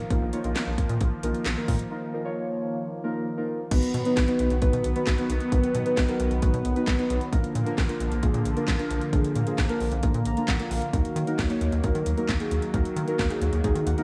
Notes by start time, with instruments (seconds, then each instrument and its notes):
Already playing: analog synth pad D#3 F3 A#3
0.10 analog synth bass A#1, synth keys A#3 D#4 F4 A#4, kick, closed hi-hat
0.22 analog synth bass A#1
0.33 synth keys A#3 D#4 F4 C#5, closed hi-hat
0.44 analog synth bass A#1, synth keys A#3 D#4 F4 A#4, closed hi-hat
0.56 snare, closed hi-hat
0.67 analog synth bass A#1
0.78 kick, closed hi-hat
0.89 analog synth bass A#2, closed hi-hat
1.01 analog synth bass A#1, kick, closed hi-hat
1.23 analog synth bass A#1, synth keys A#3 D#4 F4 A#4, closed hi-hat
1.35 closed hi-hat
1.46 analog synth bass A#1, snare, clap, closed hi-hat
1.57 synth keys A#3 D#4 F4 A#4
1.68 analog synth bass A#2, kick, open hi-hat
1.79 closed hi-hat
1.91 synth keys A#3 D#4 F4 A#4
2.14 synth keys A#3 D#4 F4 A#4
2.25 synth keys A#3 D#4 F4 C#5
3.04 synth keys A#3 D#4 F4 A#4
3.37 synth keys A#3 D#4 F4 A#4
3.71 analog synth bass B1, analog synth pad D#3 F#3 B3, synth keys B3 D#4 F#4 B4, kick, closed hi-hat, crash
3.83 closed hi-hat
3.94 analog synth bass B2, closed hi-hat
4.05 synth keys B3 D#4 F#4 B4, closed hi-hat
4.17 analog synth bass B1, kick, snare, closed hi-hat
4.28 synth keys B3 D#4 F#4 B4, closed hi-hat
4.39 analog synth bass B1, closed hi-hat
4.50 analog synth bass B1, closed hi-hat
4.62 analog synth bass B1, synth keys B3 D#4 F#4 B4, kick, closed hi-hat
4.73 analog synth bass B2, closed hi-hat
4.84 analog synth bass B1, closed hi-hat
4.96 synth keys B3 D#4 F#4 B4, closed hi-hat
5.07 analog synth bass B1, kick, snare, clap, closed hi-hat
5.18 synth keys B3 D#4 F#4 B4, closed hi-hat
5.30 analog synth bass B1, closed hi-hat
5.40 closed hi-hat
5.52 analog synth bass B1, synth keys B3 D#4 F#4 B4, kick, closed hi-hat
5.64 closed hi-hat
5.75 analog synth bass B2, closed hi-hat
5.86 synth keys B3 D#4 F#4 B4, closed hi-hat
5.97 analog synth bass B1, kick, snare, closed hi-hat
6.09 synth keys B3 D#4 F#4 A#4, closed hi-hat
6.20 analog synth bass B1, closed hi-hat
6.31 analog synth bass B1, closed hi-hat
6.42 analog synth bass B1, synth keys B3 D#4 F#4 B4, kick, closed hi-hat
6.54 analog synth bass B2, closed hi-hat
6.65 analog synth bass B1, closed hi-hat
6.76 synth keys B3 D#4 F#4 B4, closed hi-hat
6.88 analog synth bass B1, kick, snare, clap, closed hi-hat
6.99 synth keys B3 D#4 F#4 B4, closed hi-hat
7.10 analog synth bass B1, closed hi-hat
7.21 closed hi-hat
7.32 analog synth bass A#1, analog synth pad D3 F3 A#3, synth keys A#3 D4 F4 A#4, kick, closed hi-hat
7.44 closed hi-hat
7.55 analog synth bass A#2, closed hi-hat
7.66 synth keys A#3 D4 F4 A#4, closed hi-hat
7.78 analog synth bass A#1, kick, snare, closed hi-hat
7.89 synth keys A#3 D4 F4 A#4, closed hi-hat
8.00 analog synth bass A#1, closed hi-hat
8.12 analog synth bass A#1, closed hi-hat
8.23 analog synth bass A#1, synth keys A#3 D4 F4 G#4, kick, closed hi-hat
8.34 analog synth bass A#2, closed hi-hat
8.45 analog synth bass A#1, closed hi-hat
8.57 synth keys A#3 D4 F4 A#4, closed hi-hat
8.68 analog synth bass A#1, kick, snare, clap, closed hi-hat
8.79 synth keys A#3 D4 F4 A#4, closed hi-hat
8.90 analog synth bass A#1, closed hi-hat
9.01 closed hi-hat
9.13 analog synth bass A#1, synth keys A#3 D4 F4 G#4, kick, closed hi-hat
9.24 closed hi-hat
9.35 analog synth bass A#2, closed hi-hat
9.47 synth keys A#3 D4 F4 G#4, closed hi-hat
9.58 analog synth bass A#1, kick, snare, closed hi-hat
9.69 synth keys A#3 D4 F4 A#4, closed hi-hat
9.80 analog synth bass A#1, open hi-hat
9.92 analog synth bass A#1, closed hi-hat
10.03 analog synth bass A#1, synth keys A#3 D4 F4 A#4, kick, closed hi-hat
10.14 analog synth bass A#2, closed hi-hat
10.25 analog synth bass A#1, synth keys A#5, closed hi-hat
10.37 synth keys A#3 D4 F4 A#4, closed hi-hat
10.48 analog synth bass A#1, synth keys F#5, kick, snare, clap, closed hi-hat
10.60 synth keys A#3 D4 F4 A#4, closed hi-hat
10.71 analog synth bass A#1, synth keys F5, open hi-hat
10.82 closed hi-hat
10.93 analog synth bass D#2, analog synth pad D#3 F#3, synth keys A#3 D#4 F#4 A#4, kick, closed hi-hat
11.05 closed hi-hat
11.16 analog synth bass D#3, closed hi-hat
11.27 synth keys A#3 D#4 F#4 A#4, closed hi-hat
11.39 analog synth bass D#2, kick, snare, closed hi-hat
11.50 synth keys A#3 D#4 F#4 C#5, closed hi-hat
11.61 analog synth bass D#2, closed hi-hat
11.72 analog synth bass D#2, closed hi-hat
11.84 analog synth bass D#2, synth keys A#3 D#4 F#4 A#4, kick, closed hi-hat
11.95 analog synth bass D#3, closed hi-hat
12.06 analog synth bass D#2, closed hi-hat
12.17 synth keys A#3 D#4 F#4 A#4, closed hi-hat
12.29 analog synth bass D#2, kick, snare, clap, closed hi-hat
12.40 synth keys A#3 D#4 F#4 G#4, closed hi-hat
12.51 analog synth bass D#2, closed hi-hat
12.62 closed hi-hat
12.74 analog synth bass D#2, synth keys A#3 D#4 F#4 A#4, kick, closed hi-hat
12.85 closed hi-hat
12.96 analog synth bass D#3, closed hi-hat
13.08 synth keys A#3 D#4 F#4 A#4, closed hi-hat
13.19 analog synth bass D#2, kick, snare, closed hi-hat
13.30 synth keys A#3 D#4 F#4 G#4, closed hi-hat
13.41 analog synth bass D#2, closed hi-hat
13.53 analog synth bass D#2, closed hi-hat
13.64 analog synth bass D#2, synth keys A#3 D#4 F#4 G#4, kick, closed hi-hat
13.75 analog synth bass D#3, closed hi-hat
13.86 analog synth bass D#2, synth keys F#5, closed hi-hat
13.98 synth keys A#3 D#4 F#4 A#4, closed hi-hat